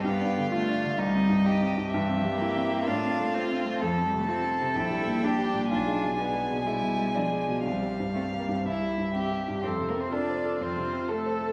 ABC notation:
X:1
M:4/4
L:1/16
Q:1/4=126
K:Cdor
V:1 name="Violin"
f8 e8 | [K:F] e8 f8 | a8 g8 | ^g16 |
f8 e6 z2 | c2 B c d4 c4 A4 |]
V:2 name="Viola"
z16 | [K:F] z16 | z16 | z16 |
z16 | A4 F8 A4 |]
V:3 name="Violin"
G4 F4 E4 G4 | [K:F] G8 F8 | A4 A8 G4 | F4 ^G4 E4 D4 |
C4 A,2 B, C E4 G4 | z4 A4 z4 A4 |]
V:4 name="Cello"
=B,4 A,4 G,6 z2 | [K:F] E,2 F, G, B,4 D4 C4 | F,2 G, A, C4 E4 D4 | D4 =B,4 G,4 F,4 |
G,12- G,2 z2 | C2 B, C D4 C4 A,4 |]
V:5 name="Grand piano" clef=bass
(3G,,2 D2 D,2 (3F2 D2 D,2 (3C,,2 C2 G,,2 (3E2 C2 G,,2 | [K:F] (3G,,2 C2 G,2 (3E2 C2 G,2 (3A,,2 C2 A,2 (3F2 C2 A,2 | (3F,,2 C2 C,2 (3F2 C2 C,2 (3B,,,2 G,2 B,,2 (3D2 G,2 B,,2 | (3=B,,,2 ^G,2 =B,,2 (3D2 G,2 B,,2 (3G,2 B,,2 G,2 (3D2 G,2 B,,2 |
(3C,,2 G,2 G,,2 (3C2 G,2 G,,2 (3C,,2 G,2 G,,2 (3C2 G,2 G,,2 | (3F,,2 C,2 C2 (3A2 c2 A2 (3F,,2 C,2 C2 (3A2 c2 A2 |]